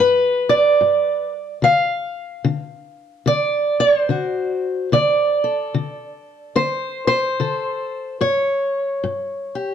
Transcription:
0.00 0.74 G2 medium
0.00 1.32 B4 loud
0.49 1.63 D5 loud
0.81 1.57 G2 medium
1.62 2.38 D3 medium
1.62 3.27 F5 loud
2.44 3.21 D3 medium
3.26 4.03 D3 medium
3.26 4.60 D5 loud
3.80 4.00 C#5 loud
4.00 5.44 C5 loud
4.09 4.85 D3 medium
4.09 4.89 F#4 soft
4.92 5.68 D3 medium
4.92 6.56 D5 loud
5.44 7.39 A4 medium
5.74 6.51 D3 medium
6.56 7.32 D3 medium
6.56 7.06 C5 loud
7.07 8.21 C5 loud
7.40 8.16 D3 medium
7.40 8.18 A4 medium
8.21 8.97 G2 medium
8.21 9.74 C#5 medium
9.04 9.74 G2 medium
9.55 9.74 G4 medium

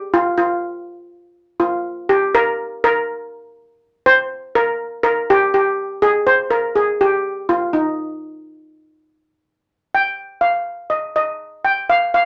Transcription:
0.00 0.15 G4 loud
0.14 0.36 F4 loud
0.38 0.84 F4 medium
1.60 2.06 F4 medium
2.09 2.35 G4 loud
2.35 2.83 A#4 loud
2.84 4.02 A#4 loud
4.06 4.56 C5 loud
4.55 5.02 A#4 loud
5.03 5.26 A#4 loud
5.30 5.52 G4 loud
5.54 6.04 G4 medium
6.02 6.27 G#4 loud
6.27 6.49 C5 loud
6.50 6.76 A#4 loud
6.75 6.86 G#4 medium
7.01 7.50 G4 medium
7.49 7.74 F4 medium
7.73 9.41 D#4 medium
9.95 10.45 G5 medium
10.41 10.87 F5 medium
10.90 11.15 D#5 medium
11.16 11.62 D#5 medium
11.65 11.88 G5 medium
11.90 12.13 F5 medium
12.14 12.25 F5 medium

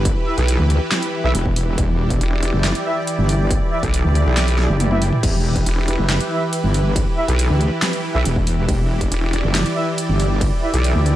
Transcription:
0.00 0.14 G1 loud
0.00 11.16 E3 medium
0.00 11.16 E4 medium
0.00 11.16 G4 medium
0.00 1.77 B4 loud
0.05 kick loud
0.05 closed hi-hat medium
0.27 0.34 E4 medium
0.27 0.34 B4 medium
0.27 0.34 E5 medium
0.38 0.58 B1 loud
0.38 closed hi-hat medium
0.48 closed hi-hat medium
0.59 0.79 D2 loud
0.70 closed hi-hat soft
0.92 snare loud
0.92 clap medium
0.92 closed hi-hat medium
1.02 closed hi-hat medium
1.24 1.33 B1 loud
1.24 1.31 E4 medium
1.24 1.31 B4 medium
1.24 1.31 E5 loud
1.35 1.76 E1 loud
1.35 closed hi-hat medium
1.46 kick medium
1.56 open hi-hat loud
1.78 2.19 E1 loud
1.78 5.22 D5 loud
1.78 kick loud
1.78 closed hi-hat medium
2.10 kick medium
2.10 closed hi-hat medium
2.21 2.52 E1 medium
2.21 closed hi-hat medium
2.43 closed hi-hat soft
2.54 2.73 F#1 loud
2.64 snare loud
2.64 clap medium
2.64 closed hi-hat medium
2.75 closed hi-hat medium
2.86 2.98 E4 medium
2.86 2.98 B4 medium
2.86 2.98 E5 medium
3.07 closed hi-hat medium
3.18 3.60 G1 loud
3.29 open hi-hat loud
3.51 kick loud
3.51 closed hi-hat medium
3.72 3.80 E4 medium
3.72 3.80 B4 medium
3.72 3.80 E5 medium
3.83 4.03 B1 loud
3.83 kick medium
3.83 closed hi-hat medium
3.94 closed hi-hat medium
4.05 4.24 D2 loud
4.15 closed hi-hat medium
4.26 4.68 B1 loud
4.37 snare loud
4.37 clap loud
4.37 closed hi-hat medium
4.48 closed hi-hat medium
4.59 snare medium
4.69 5.11 F#1 loud
4.80 closed hi-hat medium
4.80 high tom medium
4.91 5.03 E4 medium
4.91 5.03 B4 medium
4.91 5.03 E5 medium
4.91 high tom medium
5.02 open hi-hat loud
5.13 mid tom medium
5.23 5.65 E1 loud
5.23 8.67 B4 loud
5.23 kick loud
5.23 closed hi-hat medium
5.23 crash medium
5.23 ride medium
5.56 kick medium
5.56 closed hi-hat medium
5.66 5.97 E1 loud
5.66 closed hi-hat medium
5.66 ride soft
5.88 closed hi-hat medium
5.99 6.19 F#1 medium
6.10 snare loud
6.10 clap loud
6.10 closed hi-hat medium
6.10 ride medium
6.20 closed hi-hat medium
6.31 6.43 E4 medium
6.31 6.43 B4 medium
6.31 6.43 E5 medium
6.53 closed hi-hat medium
6.53 ride soft
6.64 7.05 G1 loud
6.74 open hi-hat loud
6.96 kick loud
6.96 closed hi-hat medium
6.96 ride medium
7.17 7.25 E4 medium
7.17 7.25 B4 medium
7.17 7.25 E5 medium
7.28 7.48 B1 loud
7.28 closed hi-hat medium
7.39 closed hi-hat medium
7.39 ride soft
7.50 7.70 D2 loud
7.61 closed hi-hat medium
7.82 snare loud
7.82 clap medium
7.82 closed hi-hat medium
7.82 ride medium
7.93 closed hi-hat medium
8.15 8.24 B1 loud
8.15 8.22 E4 medium
8.15 8.22 B4 medium
8.15 8.22 E5 loud
8.25 8.67 E1 loud
8.25 closed hi-hat medium
8.25 ride soft
8.36 kick medium
8.47 open hi-hat loud
8.69 9.10 E1 medium
8.69 11.16 D5 medium
8.69 kick loud
8.69 closed hi-hat medium
8.69 ride medium
9.01 kick medium
9.01 closed hi-hat medium
9.12 9.42 E1 medium
9.12 closed hi-hat medium
9.12 ride soft
9.33 closed hi-hat soft
9.44 9.64 F#1 loud
9.55 snare loud
9.55 clap medium
9.55 closed hi-hat medium
9.55 ride medium
9.66 closed hi-hat soft
9.76 9.88 E4 medium
9.76 9.88 B4 medium
9.76 9.88 E5 medium
9.98 closed hi-hat medium
9.98 ride medium
10.09 10.50 G1 loud
10.20 open hi-hat medium
10.41 kick loud
10.41 closed hi-hat medium
10.41 ride medium
10.63 10.70 E4 medium
10.63 10.70 B4 medium
10.63 10.70 E5 medium
10.74 10.94 B1 loud
10.74 closed hi-hat medium
10.84 closed hi-hat medium
10.84 ride soft
10.95 11.15 D2 loud
11.06 closed hi-hat soft

